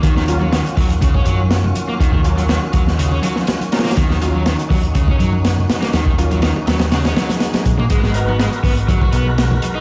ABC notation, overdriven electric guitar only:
X:1
M:4/4
L:1/16
Q:"Swing 16ths" 1/4=122
K:D#m
V:1 name="Overdriven electric guitar" clef=bass
D, D, z F, D, z F, z C, C F, z4 A, | D, D, z F, D, z F, z C, C F, z4 A, | D, D, z F, D, z F, z C, C F, z4 A, | D, D, z F, D, z F, z C, C F, z4 A, |
G, G, z B, G, z B, z F, F B, z4 D |]